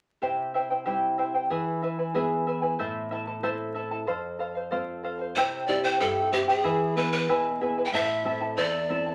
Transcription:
0.22 C3 E4 G4 C5 E5 G5
0.54 E4 C5 E5 G5
0.70 E4 C5 G5
0.86 G3 C4 E4 G4 C5 E5 G5
1.18 E4 C5 E5 G5
1.34 E4 C5 G5
1.50 E3 E4 G#4 B4 E5 G#5
1.82 E4 B4 E5 G#5
1.99 E4 B4 G#5
2.14 B3 E4 G#4 B4 E5 G#5
2.47 E4 B4 E5 G#5
2.62 E4 B4 G#5
2.79 A2 E4 A4 C5 E5 A5
3.11 E4 A4 E5 A5
3.27 E4 A4 A5
3.43 C4 E4 A4 C5 E5 A5
3.74 E4 A4 E5 A5
3.91 E4 A4 A5
4.07 F2 A4 C5 F5
4.39 A4 C5 F5
4.55 C5 F5
4.71 C4 F4 A4 C5 F5
5.03 A4 C5 F5
5.19 C5 F5
5.36 C3 E4 G4 C5 E5 G5
5.67 C4 E4 G4 C5 D5 E5 G5
5.84 E4 C5 G5
6.00 G2 E4 G4 A4 C5 E5 G5
6.32 C4 E4 G4 C5 E5 G5
6.48 E4 G#4 C5 G5
6.64 E3 E4 G#4 B4 E5 G#5
6.96 B3 E4 G#4 B4 E5 G#5
7.12 E4 B4
7.28 B2 E4 G#4 B4 E5 G#5
7.61 B3 E4 G#4 B4 E5 G#5
7.78 E4 B4 G#5
7.86 G5
7.92 A2 E4 A4 C5 E5 A5
8.24 C4 E4 A4 E5 A5
8.41 E4 A4 A5
8.57 E2 E4 A4 C5 D5 E5 A5
8.89 C4 E4 A4 E5 A5
9.06 E4 A4 A5

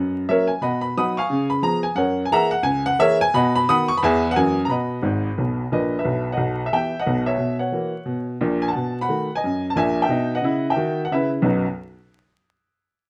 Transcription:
Already playing: F#2 B4 D#5 F#5
0.29 F#3 A#3 C#4 A#4 C#5 E5
0.47 G#5
0.61 B2 D#5 F#5 B5
0.81 B5
0.97 F#3 B3 D#4 F#5 B5 D#6
1.17 F5 G#5 C#6
1.30 C#3
1.50 B5
1.62 F3 B3 G#4 A#5
1.83 G#5
1.95 F#2 A#4 C#5 F#5
2.25 G#5
2.31 E3 A#3 G#4 E5 F#5 A#5
2.51 F#5
2.63 C#2 G#5
2.86 F#5
2.99 E3 A#3 G#4 A#4 C#5 E5
3.21 G#5
3.34 B2 D#5 F#5 B5
3.56 B5
3.69 D#3 B3 F#4 F#5 B5 D#6
3.88 C#6
3.98 B5
4.03 E2 E3 B3 G#4 B4 E5 G#5
4.31 F#5
4.36 F#2 E3 A#3 F#4 G#5
4.65 B2 A#5
4.70 D#5 F#5 B5
5.02 G#1 G#2
5.38 B1 B2
5.72 A#1 A#2 B4 D#5
5.99 B4 E5
6.05 B1 B2
6.32 D#5 F#5
6.37 B1 B2
6.66 E5
6.72 E3 B3 G4 E5 G5
6.99 D#5 F#5
7.06 B1 B2
7.26 C#5 E5
7.38 B2
7.59 C#5 F#5
7.72 E3 A#3 F#4
8.06 B2
8.41 A#1 A#2
8.62 G#5
8.68 F#5 A5
8.75 B2
9.01 F#5 B5
9.08 D#3 A3 F#4
9.35 D#5 G#5
9.44 F#2
9.70 A5
9.76 A#1 A#2 E5 G#5
10.02 E5 G5
10.08 B2 D#4
10.35 D#5 F#5
10.41 C#3 E4
10.70 E5 G5
10.76 D#3 F#4
11.05 F#5
11.11 C#3 E4 B4 E5
11.42 B1 F#2 F#3 B3 D#4 F#4 B4

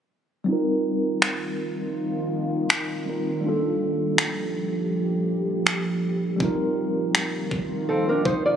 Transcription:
0.44 D#3 G3 A#3 C4 D#4 F4
0.50 F4 A#4
1.22 finger snap
2.70 finger snap
3.05 G3 C4 D#4 F4
3.09 A#4
3.40 G3 A3
3.44 F3 D4 F4 G4
3.49 A#3 A4
4.18 finger snap
5.67 finger snap
6.36 D#3 G3 C4 F4, kick
6.40 D#4 F4
6.45 A#4
7.15 finger snap
7.51 kick
7.89 C4 A4
8.09 D4 A#4
8.25 D#4 C5, kick
8.46 F4 D5

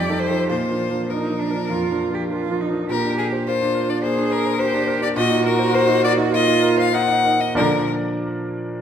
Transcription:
Already playing: F2 G4 D5
0.09 F3 D#4 A4
0.19 C5
0.29 F3 D#4 A4
0.48 A#2 F4 C5
0.69 F3 D4 A#4
0.90 F3 D4 A#4
1.10 F3 D4 D#4 A#4
1.30 F3 D4 A#4
1.40 D4
1.50 F3 D4 A#4
1.70 F2 F4
1.90 F3 D4 A#4
2.10 F3 D4 A#4
2.14 G4
2.29 F3 D4 F4 A#4
2.49 F3 D4 A#4
2.61 D#4
2.70 F3 D4 A#4
2.89 A#2 G4 A#4
3.04 D4
3.18 G#4 A#4
3.32 C5
3.47 F4 A#4 C5
3.61 D4
3.75 A#4
3.89 D4 D5
4.03 A#3 G#4 C5
4.17 D4
4.31 A#4
4.46 C5
4.59 G4 A#4 C5
4.74 D4
4.88 A#4
5.02 D4 D5
5.16 A#2 F#4 D#5
5.31 D#4
5.45 A#4
5.59 C5
5.74 A#4 C5
5.88 D#4
6.03 A#4 D5
6.17 D#4
6.32 A#3 F4 D#5
6.47 D#4
6.63 A#4
6.77 C5 F5
6.92 D#4 A#4 F#5
7.08 D#4
7.24 A#4
7.40 D#4 D#5
7.55 A#2 D3 F3 A#3 D4 A#4 D5

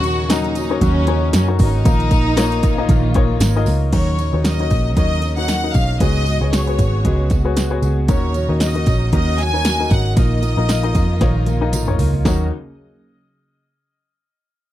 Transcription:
Already playing: D#2 A#2 C#3 F#3 A#3 C#4 D#4 F#4 A#4 C#5
0.03 C#4 F#4 A#4, closed hi-hat, tambourine
0.29 F#3 C#4 D#4 F#4 A#4 D#5, snare, closed hi-hat, tambourine
0.44 closed hi-hat
0.55 C#4 F#4 A#4, closed hi-hat, tambourine
0.70 C#4 D#4 F#4 A#4 C#5
0.81 D#2 D#3 F#3 C#4 F#4 A#4, kick, closed hi-hat, tambourine
1.07 C#4 D#4 F#4 A#4 C#5, closed hi-hat
1.33 F#2 F#3 C#4 F#4 A#4, snare, closed hi-hat, tambourine
1.48 C#4 D#4 F#4 A#4 C#5
1.59 G#1 C#4 D#4 F#4 A#4, kick, open hi-hat, tambourine
1.85 A#1 A#2 D#3 F3 A#3 D#4 F4 A#4 D#5, kick, closed hi-hat, tambourine
2.00 closed hi-hat
2.10 A#3 D#4 F4 A#4, kick, closed hi-hat, tambourine
2.36 A#3 D#4 F4 A#4 C#5, snare, closed hi-hat, tambourine
2.52 closed hi-hat
2.62 A#3 D#4 F4 A#4, kick, closed hi-hat, tambourine
2.78 A#3 D#4 F4 A#4 D#5
2.88 A#1 A#2 D#3 A#3 D#4 F4 A#4, kick, closed hi-hat, tambourine
3.14 A#3 D#4 F4 A#4 C#5, kick, closed hi-hat
3.40 G#1 A#3 D#4 F4 A#4, snare, closed hi-hat, tambourine
3.56 A#3 D#4 F4 A#4 D#5
3.65 C#2 A#3 D#4 F4 A#4, snare, open hi-hat, tambourine
3.92 D#2 A#2 C#3 D#3 F#3 A#3 C#4 D#4 F#4 A#4 C#5, kick, closed hi-hat, crash, tambourine
4.18 C#4 D#4 A#4, closed hi-hat, tambourine
4.33 D#2 D#4 F#4 A#4 C#5
4.43 F#3 C#4 D#4 A#4 D#5, snare, closed hi-hat, tambourine
4.59 D#4 F#4 A#4 C#5, closed hi-hat
4.69 A#1 C#4 D#4 A#4, kick, closed hi-hat, tambourine
4.95 D#2 D#3 F#3 C#4 D#4 F#4 A#4 C#5 D#5, kick, closed hi-hat, tambourine
5.21 C#4 D#4 A#4, closed hi-hat, tambourine
5.37 D#4 F#4 A#4 D#5 F#5
5.48 F#3 C#4 D#4 A#4, snare, closed hi-hat, tambourine
5.64 D#4 F#4 A#4 D#5
5.74 B1 C#4 D#4 A#4 F5, kick, closed hi-hat, tambourine
6.00 C#2 G#2 C#3 G#3 B3 F#4 G#4 B4 C#5 D#5, kick, closed hi-hat, tambourine
6.26 B3 F#4 G#4, closed hi-hat, tambourine
6.41 C#2 F#4 G#4 B4 C#5
6.51 G#3 B3 F#4 G#4 C#5, snare, closed hi-hat, tambourine
6.66 F#4 G#4 B4 C#5, closed hi-hat
6.78 G#1 B3 F#4 G#4, kick, closed hi-hat, tambourine
7.04 C#2 C#3 G#3 B3 F#4 G#4 B4 D#5, kick, closed hi-hat
7.30 B3 F#4 G#4, kick, closed hi-hat, tambourine
7.45 F#4 G#4 B4 C#5
7.56 G#3 B3 F#4 G#4, snare, closed hi-hat, tambourine
7.70 F#4 G#4 B4 C#5
7.82 C#2 B3 F#4 G#4, closed hi-hat, tambourine
8.08 D#2 A#2 D#3 F#3 A#3 C#4 D#4 F#4 A#4 C#5, kick, closed hi-hat, tambourine
8.34 C#4 F#4 A#4, closed hi-hat, tambourine
8.49 D#2 D#4 F#4 A#4 D#5
8.60 A#3 C#4 F#4 A#4 D#5, snare, closed hi-hat, tambourine
8.75 D#4 F#4 A#4 D#5, closed hi-hat
8.86 A#1 C#4 F#4 A#4, kick, closed hi-hat, tambourine
9.12 D#2 D#3 A#3 C#4 D#4 F#4 A#4 D#5, kick, closed hi-hat
9.38 C#4 F#4 A#4 G#5, closed hi-hat, tambourine
9.53 D#4 F#4 A#4 C#5
9.64 A#3 C#4 F#4 A#4, snare, closed hi-hat, tambourine
9.80 D#4 F#4 A#4 D#5
9.90 G#1 C#4 F#4 A#4 F#5, kick, closed hi-hat, tambourine
10.16 A#1 A#2 D#3 F3 A#3 D#4 F4 A#4 D#5, kick, closed hi-hat, tambourine
10.42 A#3 D#4 F4 A#4, closed hi-hat, tambourine
10.57 A#1 D#4 F4 A#4 D#5
10.68 A#3 D#4 F4 A#4, snare, closed hi-hat, tambourine
10.83 D#4 F4 A#4 D#5, closed hi-hat
10.94 F2 A#3 D#4 F4 A#4, kick, closed hi-hat, tambourine
11.21 A#1 A#2 D#3 A#3 D#4 F4 A#4 C#5, kick, snare, closed hi-hat, tambourine
11.46 A#3 D#4 F4 A#4, closed hi-hat, high tom, tambourine
11.61 D#4 F4 A#4 D#5
11.73 A#3 D#4 F4 A#4, closed hi-hat, mid tom, tambourine
11.87 D#4 F4 A#4 C#5, mid tom
11.98 C#2 A#3 D#4 F4 A#4, floor tom, open hi-hat, tambourine
12.14 floor tom
12.25 D#2 C#3 D#3 F#3 A#3 C#4 D#4 F#4 A#4 C#5, kick, snare, tambourine

